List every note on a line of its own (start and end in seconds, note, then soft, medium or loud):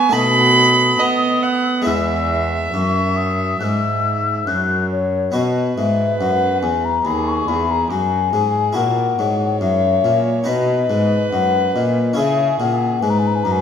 0.00 0.12 B3 medium
0.00 0.15 G#5 medium
0.00 0.13 C#6 medium
0.09 1.80 A3 soft
0.09 0.99 B3 medium
0.09 1.81 D#4 soft
0.09 1.01 B5 loud
0.14 0.95 B2 medium
0.14 0.98 B2 medium
0.14 1.88 D#6 medium
0.99 1.88 B3 medium
0.99 1.82 B3 medium
0.99 1.45 D#5 medium
1.43 1.86 F#5 medium
1.82 2.69 G#3 soft
1.82 2.69 B3 soft
1.82 5.30 E4 soft
1.86 2.73 E2 medium
1.86 2.70 E2 soft
1.86 4.44 E5 medium
1.86 2.46 E6 medium
2.74 3.59 F#2 medium
2.74 3.57 F#2 soft
2.74 3.18 C#6 medium
3.17 3.60 D#6 medium
3.60 4.46 G#2 medium
3.60 4.44 G#2 soft
3.60 4.49 E6 medium
3.60 3.65 F#6 medium
4.47 5.30 F#2 soft
4.47 5.33 F#2 medium
4.47 4.90 F#6 medium
4.90 5.35 C#5 medium
5.32 5.74 B2 soft
5.32 5.75 B2 soft
5.32 8.71 B3 soft
5.32 8.72 F#4 soft
5.32 7.02 B4 medium
5.32 5.77 D#5 medium
5.77 6.17 G#2 soft
5.77 6.20 G#2 medium
5.77 6.19 E5 medium
6.20 6.65 F#2 soft
6.20 6.59 F#2 soft
6.20 6.61 F#5 medium
6.62 7.02 E2 soft
6.62 7.05 E2 soft
6.62 6.86 G#5 medium
6.85 7.07 A#5 medium
7.05 7.44 D#2 soft
7.05 7.47 D#2 medium
7.05 7.92 G#4 medium
7.05 7.30 B5 medium
7.28 7.49 C#6 medium
7.48 7.90 E2 soft
7.48 7.87 E2 soft
7.48 7.72 B5 medium
7.71 7.90 A#5 medium
7.90 8.35 F#2 soft
7.90 8.29 F#2 soft
7.90 8.33 F#4 soft
7.90 8.77 G#5 medium
8.33 8.75 G#2 soft
8.33 8.72 G#2 soft
8.33 8.78 G#4 soft
8.73 9.15 A#2 soft
8.73 9.18 A#2 medium
8.73 10.41 E4 soft
8.73 10.42 F#4 soft
8.73 9.61 F#5 medium
8.77 9.20 A#4 medium
9.19 9.63 G#2 soft
9.19 9.58 G#2 soft
9.19 10.49 C#5 medium
9.61 10.04 F#2 medium
9.61 10.00 F#2 soft
9.61 10.20 E5 medium
10.04 10.46 A#2 soft
10.04 10.43 A#2 soft
10.44 10.86 B2 soft
10.44 10.89 B2 medium
10.44 12.12 D#4 soft
10.44 12.13 B4 soft
10.44 12.17 B4 medium
10.44 11.31 D#5 medium
10.90 11.28 G#2 soft
10.90 11.32 G#2 medium
11.32 11.74 F#2 medium
11.32 11.71 F#2 soft
11.32 11.74 F#5 medium
11.75 12.17 A#2 medium
11.75 12.14 A#2 soft
11.75 12.20 D#5 medium
12.13 13.61 C#4 soft
12.13 13.61 E4 soft
12.13 13.61 G#4 soft
12.18 12.59 C#3 medium
12.18 12.56 C#3 soft
12.18 13.01 G#4 medium
12.18 12.59 E5 medium
12.60 12.99 A#2 soft
12.60 13.02 A#2 soft
12.60 13.04 F#5 medium
13.02 13.42 G#2 soft
13.02 13.45 G#2 medium
13.02 13.61 B4 medium
13.02 13.11 G#5 medium
13.10 13.20 A#5 medium
13.19 13.28 G#5 medium
13.27 13.37 A#5 medium
13.35 13.45 G#5 medium
13.43 13.61 F#2 soft
13.43 13.61 F#2 medium
13.43 13.53 A#5 medium
13.52 13.61 G#5 medium